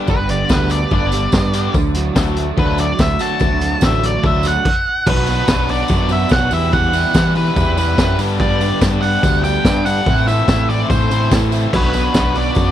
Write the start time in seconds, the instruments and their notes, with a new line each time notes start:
Already playing: overdriven electric guitar D3 G3 B3 D4 G4, tonewheel organ G3 B3 D4 B4 D5
0.07 picked electric bass G1, overdriven electric guitar G2, lead electric guitar B4, kick, tambourine
0.29 overdriven electric guitar D3, lead electric guitar D5, closed hi-hat, tambourine
0.49 picked electric bass D2, overdriven electric guitar D3 G3 B3 D4, lead electric guitar B4, kick, snare, tambourine
0.70 overdriven electric guitar B3, lead electric guitar D5, closed hi-hat, tambourine
0.91 picked electric bass G1, overdriven electric guitar D3 G3 B3 D4, lead electric guitar D5, kick, tambourine
1.12 overdriven electric guitar G3, closed hi-hat, tambourine
1.32 picked electric bass G2, overdriven electric guitar B3, kick, snare, tambourine
1.53 overdriven electric guitar D3 G3 B3 D4 G4, closed hi-hat, tambourine
1.74 picked electric bass D2, overdriven electric guitar D3, tonewheel organ F#3 A3 A4 D5, kick, tambourine
1.94 overdriven electric guitar F#3, closed hi-hat, tambourine
2.16 picked electric bass D2, overdriven electric guitar D3 F#3 A3 D4, kick, snare, tambourine
2.36 overdriven electric guitar A3, closed hi-hat
2.57 picked electric bass D2, overdriven electric guitar D3 F#3 A3 D4, lead electric guitar B4, kick, tambourine
2.78 overdriven electric guitar F#3, lead electric guitar D5, closed hi-hat, tambourine
2.99 picked electric bass D2, overdriven electric guitar A3, lead electric guitar E5, kick, snare, tambourine
3.19 overdriven electric guitar D3 F#3 A3 D4 F#4, lead electric guitar A5, closed hi-hat, tambourine
3.40 picked electric bass D2, overdriven electric guitar D3, kick, tambourine
3.60 overdriven electric guitar F#3, closed hi-hat, tambourine
3.81 picked electric bass A1, overdriven electric guitar D3 F#3 A3 D4, lead electric guitar E5, kick, snare, tambourine
4.03 overdriven electric guitar A3, lead electric guitar D5, closed hi-hat
4.23 picked electric bass D2, overdriven electric guitar D3 F#3 A3 D4, lead electric guitar E5, kick, tambourine
4.43 overdriven electric guitar F#3, closed hi-hat, tambourine
4.48 lead electric guitar F#5
4.65 kick, crash
5.06 picked electric bass B1, overdriven electric guitar B2 F#3 B3 D4 F#4, tonewheel organ F#4 B4 D5 B5, lead electric guitar B4, synth bell B5, kick, crash, tambourine
5.16 tambourine
5.26 overdriven electric guitar B2 F#3 B3 D4 F#4, open hi-hat, tambourine
5.48 picked electric bass B1, overdriven electric guitar B2 F#3 B3 D4 F#4, kick, snare, tambourine
5.58 tambourine
5.68 overdriven electric guitar B2 F#3 B3 D4 F#4, lead electric guitar D5, synth bell D6, open hi-hat, tambourine
5.78 tambourine
5.88 picked electric bass F#2, overdriven electric guitar B2 F#3 B3 D4 F#4, kick, tambourine
6.09 overdriven electric guitar B2 F#3 B3 D4 F#4, lead electric guitar E5, synth bell E6, open hi-hat, tambourine
6.19 tambourine
6.29 picked electric bass B1, overdriven electric guitar B2 F#3 B3 D4 F#4, lead electric guitar F#5, synth bell F#6, kick, snare, tambourine
6.39 tambourine
6.50 overdriven electric guitar E2 B2 E3 G3 B3 E4 G4, picked electric bass E2, tonewheel organ G4 E5 F#5 B5, lead electric guitar E5, synth bell E6, open hi-hat, tambourine
6.72 overdriven electric guitar E2 B2 E3 G3 B3 E4 G4, lead electric guitar F#5, synth bell F#6, kick, tambourine
6.83 tambourine
6.92 overdriven electric guitar E2 B2 E3 G3 B3 E4 G4, open hi-hat, tambourine
7.13 overdriven electric guitar E2 B2 E3 G3 B3 E4 G4, picked electric bass E3, kick, snare, tambourine
7.26 tambourine
7.35 overdriven electric guitar E2 B2 E3 G3 B3 E4 G4, lead electric guitar B4, synth bell B5, open hi-hat, tambourine
7.47 tambourine
7.55 overdriven electric guitar E2 B2 E3 G3 B3 E4 G4, picked electric bass E2, kick, tambourine
7.76 overdriven electric guitar E2 B2 E3 G3 B3 E4 G4, picked electric bass E2, lead electric guitar B4, synth bell B5, open hi-hat, tambourine
7.97 overdriven electric guitar E2 B2 E3 G3 B3 E4 G4, picked electric bass F#2, kick, snare, tambourine
8.09 tambourine
8.17 overdriven electric guitar G2 D3 G3 B3 D4 G4, picked electric bass G2, tonewheel organ D5 A5, open hi-hat, tambourine
8.39 overdriven electric guitar G2 D3 G3 B3 D4 G4, lead electric guitar D5, synth bell D6, kick, tambourine
8.51 tambourine
8.60 overdriven electric guitar G2 D3 G3 B3 D4 G4, open hi-hat, tambourine
8.81 overdriven electric guitar G2 D3 G3 B3 D4 G4, picked electric bass G2, kick, snare, tambourine
9.02 overdriven electric guitar G2 D3 G3 B3 D4 G4, lead electric guitar F#5, synth bell F#6, open hi-hat, tambourine
9.13 tambourine
9.23 picked electric bass D2, overdriven electric guitar G2 D3 G3 B3 D4 G4, kick, tambourine
9.44 overdriven electric guitar G2 D3 G3 B3 D4 G4, lead electric guitar G5, synth bell G6, open hi-hat, tambourine
9.55 tambourine
9.64 overdriven electric guitar G2 D3 G3 B3 D4 G4, picked electric bass G2, kick, snare, tambourine
9.85 overdriven electric guitar G2 D3 G3 B3 D4 G4, lead electric guitar F#5, synth bell F#6, open hi-hat, tambourine
10.06 picked electric bass A2, overdriven electric guitar A2 E3 A3 C4 E4 A4, tonewheel organ A4 C5 E5 C6, kick, tambourine
10.18 tambourine
10.27 overdriven electric guitar A2 E3 A3 C4 E4 A4, lead electric guitar E5, synth bell E6, open hi-hat, tambourine
10.39 tambourine
10.47 overdriven electric guitar A2 E3 A3 C4 E4 A4, picked electric bass A2, kick, snare, tambourine
10.69 overdriven electric guitar A2 E3 A3 C4 E4 A4, lead electric guitar D5, synth bell D6, open hi-hat
10.89 overdriven electric guitar A2 E3 A3 C4 E4 A4, picked electric bass A2, lead electric guitar C5, synth bell C6, kick, tambourine
11.02 tambourine
11.10 overdriven electric guitar A2 E3 A3 C4 E4 A4, picked electric bass A2, open hi-hat, tambourine
11.30 overdriven electric guitar A2 E3 A3 C4 E4 A4, picked electric bass A2, kick, snare, tambourine
11.52 overdriven electric guitar A2 E3 A3 C4 E4 A4, open hi-hat, tambourine
11.63 tambourine
11.72 picked electric bass B1, overdriven electric guitar B2 F#3 B3 D4 F#4, tonewheel organ F#4 B4 D5 B5, lead electric guitar B4, synth bell B5, kick, tambourine, crash
11.84 tambourine
11.93 overdriven electric guitar B2 F#3 B3 D4 F#4, open hi-hat, tambourine
12.14 picked electric bass B1, overdriven electric guitar B2 F#3 B3 D4 F#4, kick, snare, tambourine
12.34 overdriven electric guitar B2 F#3 B3 D4 F#4, lead electric guitar D5, synth bell D6, open hi-hat, tambourine
12.44 tambourine
12.55 picked electric bass F#2, overdriven electric guitar B2 F#3 B3 D4 F#4, kick, tambourine